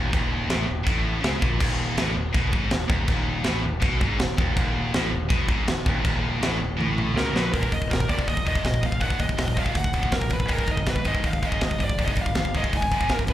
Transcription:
Already playing: D#1 D#2
0.12 D#1 D#2, kick, china
0.48 A1 A2, snare, china
0.65 D#1 D#2
0.84 A1 A2, kick, china
1.21 C#2 C#3, snare, china
1.40 A#1 A#2, kick
1.57 D#1 D#2, kick, china, crash
1.96 A1 A2, snare, china
2.14 D#1 D#2
2.33 B1 B2, kick, china
2.52 G#1 G#2, kick
2.70 D#1 D#2, snare, china
2.88 D#1 D#2, kick
3.08 D#1 D#2, kick, china
3.44 A1 A2, snare, china
3.63 D#1 D#2
3.80 B1 B2, kick, china
4.00 G#1 G#2, kick
4.18 D#1 D#2, snare, china
4.37 D#1 D#2, kick
4.56 D#1 D#2, kick, china
4.93 A1 A2, snare, china
5.11 D#1 D#2
5.29 B1 B2, kick, china
5.48 G#1 G#2, kick
5.67 D#1 D#2, snare, china
5.86 D#1 D#2, kick
6.03 D#1 D#2, kick, china
6.39 A1 A2, snare, china
6.57 D#1 D#2
6.77 A1 A2, high tom
6.98 mid tom
7.14 C#2 C#3 A#4, snare
7.33 A#1 A#2 B4, snare
7.52 D#1 D#2 A#2 D#3 A#4, kick, open hi-hat
7.63 kick
7.70 D#1 D#2 A#2 D#5, kick, open hi-hat
7.82 kick
7.90 F#1 D#2 A#2 A#4, kick, snare, open hi-hat
8.00 kick
8.09 D#1 D#2 A#2 D#3 D5, kick, open hi-hat
8.19 kick
8.27 D#1 D#2 A#2 D#5, kick, open hi-hat
8.37 kick
8.45 D#1 D#2 A#2 D#3 D#5, kick, open hi-hat
8.55 kick
8.63 D#1 D#2 A#2, kick, snare, open hi-hat
8.74 kick
8.82 D#1 D#2 A#2 F5, kick, open hi-hat
8.92 kick
9.00 D#1 D#2 A#2 D#3 F#5, kick, open hi-hat
9.10 kick
9.19 D#1 D#2 A#2 D#5, kick, open hi-hat
9.29 kick
9.37 D#1 D#2 A#2, kick, snare, open hi-hat
9.48 kick
9.56 D#2 A#2 D#3 F5, kick, open hi-hat
9.66 kick
9.74 D2 D#2 A#2 F#5, kick, open hi-hat
9.84 kick
9.93 D#1 D#2 A#2 D#3, kick, open hi-hat
10.03 kick
10.11 D#1 D#2 A#2 A#4, kick, snare, open hi-hat
10.22 kick
10.30 D#1 D#2 A#2 B4, kick, open hi-hat
10.40 kick
10.47 G#1 G#2 D#3 G#3, kick, open hi-hat
10.53 A#4
10.59 kick
10.67 G#1 G#2 D#3, kick, open hi-hat
10.71 D#5
10.77 kick
10.86 B1 G#2 D#3, kick, snare, open hi-hat
10.90 B4
10.96 kick
11.05 G#1 G#2 D#3 G#3 D#5, kick, open hi-hat
11.15 kick
11.24 G#1 G#2 D#3, kick, open hi-hat
11.28 F5
11.33 kick
11.42 G#1 G#2 D#3 G#3, kick, open hi-hat
11.47 D#5
11.52 kick
11.60 G#1 G#2 D#3, kick, snare, open hi-hat
11.71 kick
11.79 G#1 G#2 D#3, kick, open hi-hat
11.84 D5
11.90 kick
11.98 G#1 G#2 D#3 G#3, kick, open hi-hat
12.05 D#5, kick
12.15 G#1 G#2 D#3, kick, open hi-hat
12.22 F5
12.26 kick
12.35 G#1 G#2 D#3, kick, snare, open hi-hat
12.45 kick
12.55 G#2 D#3 G#3 D#5, kick, open hi-hat
12.64 kick
12.73 F#1 G#2 D#3 G#5, kick, open hi-hat
12.82 kick
12.91 G#1 G#2 D#3 G#3, kick, open hi-hat
13.01 kick
13.09 G#1 G#2 D#3 A#4, kick, snare, open hi-hat
13.19 kick
13.27 G#1 G#2 D#3 B4, kick, open hi-hat

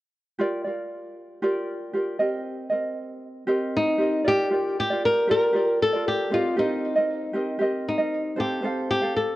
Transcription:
0.39 F4 G4 A#4 D5
0.64 F4 A#4 D5
1.42 F4 G4 A#4 D5
1.93 F4 G4 A#4 D5
2.19 C4 G4 A#4 D#5
2.70 C4 A#4 D#5
3.47 C4 G4 A#4 D#5
3.76 D#4
3.98 C4 G4 A#4 D#5
4.24 F4 G4 A#4 D5
4.50 F4 G4 A#4 D5
4.80 G4
4.90 F4 A#4 D5
5.05 A#4
5.27 F4 G4 A#4 D5
5.53 F4 G4 A#4 D5
5.82 A4
5.93 F4 A#4 D5
6.08 G4
6.30 C4 F4 G4 A#4 D#5
6.56 C4 D#4 G4 A#4 D#5
6.96 C4 A#4 D#5
7.33 C4 G4 A#4 D#5
7.59 C4 G4 A#4 D#5
7.89 D#4
7.98 C4 A#4 D#5
8.36 C4 G4 A4 C5 F5
8.62 C4 A4 C5 F5
8.91 G4
9.01 C4 A4 F5
9.16 A4

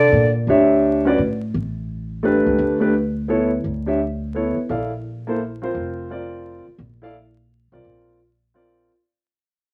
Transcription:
Already playing: C3 D3 D5
0.12 A#2
0.47 D2 D4 G4 C#5 E5
1.05 C#4 F#4 B4 D5
1.18 A2
1.54 A1
2.23 A3 D4 G4 B4
2.46 C#2
2.58 D2
2.80 A3 D4 G4 B4
3.28 B3 E4 A4 C#5
3.64 D2
3.86 D4 G4 C#5 E5
4.35 B3 E4 A4 C#5
4.57 muted upright bass stroke
4.69 A#1 E4 A4 D5 F5
5.27 A#3 E4 A4 C5
5.62 C4 F4 A#4 C5
5.75 F1
6.10 C4 F4 A#4 D5
6.67 muted upright bass stroke
6.79 A#1
7.02 E4 A4 D5 F5
7.72 B1 C4 F4 A#4 D5
7.85 A#1
8.54 C4 F4 A#4 D5

